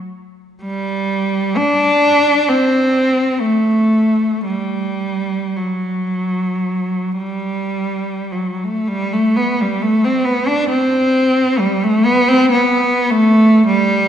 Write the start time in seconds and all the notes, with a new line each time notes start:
0.62 G3
1.56 D4
2.48 C4
3.40 A3
4.46 G3
5.56 F#3
7.17 G3
8.32 F#3
8.64 A3
8.88 G3
9.13 A3
9.36 B3
9.61 G3
9.82 A3
10.04 C4
10.24 B3
10.48 D4
10.69 C4
11.59 G3
11.83 A3
12.05 B3
12.28 C4
12.51 B3
13.10 A3
13.66 G3